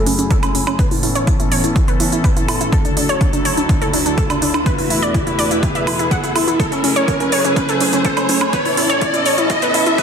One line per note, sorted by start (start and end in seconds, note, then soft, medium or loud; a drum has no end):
0.00 0.77 F#2 medium
0.00 0.77 F#3 medium
0.00 0.77 A3 medium
0.00 0.77 E4 medium
0.00 0.77 G#4 medium
0.00 riser medium
0.06 0.16 C#4 medium
0.06 open hi-hat loud
0.19 0.28 C#4 medium
0.19 closed hi-hat soft
0.31 0.40 A4 medium
0.31 kick loud
0.31 closed hi-hat medium
0.43 0.52 C#4 medium
0.43 closed hi-hat soft
0.43 high woodblock medium
0.55 0.64 C#4 medium
0.55 open hi-hat loud
0.67 0.76 C#4 medium
0.67 closed hi-hat soft
0.67 high woodblock medium
0.79 2.71 A2 medium
0.79 2.71 E3 medium
0.79 2.71 B3 medium
0.79 2.71 C#4 medium
0.79 4.62 A4 medium
0.79 0.88 B4 medium
0.79 kick loud
0.79 closed hi-hat medium
0.91 1.00 E4 medium
0.91 open hi-hat medium
1.03 1.12 E4 medium
1.03 open hi-hat loud
1.15 1.24 C#5 medium
1.15 closed hi-hat soft
1.27 1.37 E4 medium
1.27 kick loud
1.27 closed hi-hat medium
1.40 1.49 E4 medium
1.40 closed hi-hat soft
1.52 1.61 C#5 medium
1.52 open hi-hat loud
1.64 1.73 E4 medium
1.64 closed hi-hat soft
1.76 1.85 E4 medium
1.76 kick loud
1.76 closed hi-hat medium
1.88 1.97 B4 medium
1.88 closed hi-hat soft
2.00 2.09 E4 medium
2.00 open hi-hat loud
2.12 2.21 E4 medium
2.12 closed hi-hat soft
2.24 2.33 B4 medium
2.24 kick loud
2.24 closed hi-hat medium
2.37 2.46 E4 medium
2.37 closed hi-hat soft
2.48 2.58 E4 medium
2.48 open hi-hat loud
2.48 high woodblock medium
2.61 2.70 E4 medium
2.61 closed hi-hat soft
2.72 4.64 D2 medium
2.72 4.64 D3 medium
2.72 4.64 F#3 medium
2.72 8.49 E4 medium
2.72 2.82 A4 medium
2.72 kick loud
2.72 closed hi-hat medium
2.85 2.94 D4 medium
2.85 closed hi-hat soft
2.97 3.06 D4 medium
2.97 open hi-hat loud
3.09 3.18 C#5 medium
3.09 closed hi-hat soft
3.21 3.30 D4 medium
3.21 kick loud
3.21 closed hi-hat medium
3.33 3.42 D4 medium
3.33 closed hi-hat soft
3.45 3.54 C#5 medium
3.45 open hi-hat loud
3.57 3.66 D4 medium
3.57 closed hi-hat soft
3.69 3.79 D4 medium
3.69 kick loud
3.69 closed hi-hat medium
3.82 3.91 A4 medium
3.82 closed hi-hat soft
3.93 4.03 D4 medium
3.93 open hi-hat loud
4.06 4.15 D4 medium
4.06 closed hi-hat soft
4.18 4.27 A4 medium
4.18 kick loud
4.18 closed hi-hat medium
4.30 4.39 D4 medium
4.30 closed hi-hat soft
4.30 high woodblock medium
4.42 4.51 D4 medium
4.42 open hi-hat loud
4.54 4.63 D4 medium
4.54 closed hi-hat soft
4.54 high woodblock medium
4.66 6.58 E2 medium
4.66 6.58 B2 medium
4.66 6.58 A3 medium
4.66 4.75 B4 medium
4.66 6.58 B4 medium
4.66 kick loud
4.66 closed hi-hat medium
4.78 4.87 E4 medium
4.78 open hi-hat medium
4.90 5.00 E4 medium
4.90 open hi-hat loud
5.02 5.12 D5 loud
5.02 closed hi-hat soft
5.14 5.24 E4 medium
5.14 kick loud
5.14 closed hi-hat medium
5.27 5.36 E4 medium
5.27 closed hi-hat soft
5.39 5.48 D5 medium
5.39 open hi-hat loud
5.51 5.60 E4 medium
5.51 closed hi-hat soft
5.63 5.72 E4 medium
5.63 kick loud
5.63 closed hi-hat medium
5.75 5.84 E5 medium
5.75 closed hi-hat soft
5.87 5.96 E4 medium
5.87 open hi-hat loud
5.87 high woodblock medium
5.99 6.08 E4 medium
5.99 closed hi-hat soft
6.11 6.20 F#5 medium
6.11 kick loud
6.11 closed hi-hat medium
6.24 6.33 E4 medium
6.24 closed hi-hat soft
6.35 6.45 E4 medium
6.35 open hi-hat loud
6.35 high woodblock medium
6.48 6.57 E4 medium
6.48 closed hi-hat soft
6.60 8.51 F#2 medium
6.60 8.51 C#3 medium
6.60 8.51 A3 medium
6.60 8.51 G#4 medium
6.60 6.69 A4 medium
6.60 kick loud
6.60 closed hi-hat medium
6.72 6.81 C#4 medium
6.72 closed hi-hat soft
6.84 6.93 C#4 medium
6.84 open hi-hat loud
6.96 7.05 C#5 loud
6.96 closed hi-hat soft
7.08 7.17 C#4 medium
7.08 kick loud
7.08 closed hi-hat medium
7.20 7.29 C#4 medium
7.20 closed hi-hat soft
7.32 7.41 C#5 medium
7.32 open hi-hat loud
7.44 7.54 C#4 medium
7.44 closed hi-hat soft
7.56 7.66 C#4 medium
7.56 kick medium
7.56 closed hi-hat medium
7.69 7.78 A4 medium
7.69 closed hi-hat soft
7.81 7.90 C#4 medium
7.81 open hi-hat loud
7.93 8.02 C#4 medium
7.93 closed hi-hat soft
8.05 8.14 A4 loud
8.05 kick loud
8.05 closed hi-hat medium
8.17 8.26 C#4 medium
8.17 closed hi-hat soft
8.17 high woodblock medium
8.29 8.38 C#4 medium
8.29 open hi-hat loud
8.41 8.50 C#4 medium
8.41 closed hi-hat soft
8.41 high woodblock medium
8.53 10.03 A2 medium
8.53 10.03 E3 medium
8.53 10.03 B3 medium
8.53 10.03 C#4 medium
8.53 10.03 A4 medium
8.53 8.62 B4 loud
8.53 kick loud
8.53 closed hi-hat medium
8.65 8.74 E4 medium
8.65 open hi-hat medium
8.77 8.87 E4 medium
8.77 open hi-hat loud
8.90 8.99 C#5 loud
8.90 closed hi-hat soft
9.01 9.11 E4 medium
9.01 kick loud
9.01 closed hi-hat medium
9.14 9.23 E4 medium
9.14 closed hi-hat soft
9.26 9.35 C#5 medium
9.26 open hi-hat loud
9.38 9.47 E4 medium
9.38 closed hi-hat soft
9.50 9.59 E4 medium
9.50 kick loud
9.50 closed hi-hat medium
9.62 9.71 B4 medium
9.62 closed hi-hat soft
9.74 9.83 E4 medium
9.74 open hi-hat loud
9.86 9.95 E4 medium
9.86 closed hi-hat soft
9.98 10.03 B4 medium
9.98 kick loud
9.98 closed hi-hat medium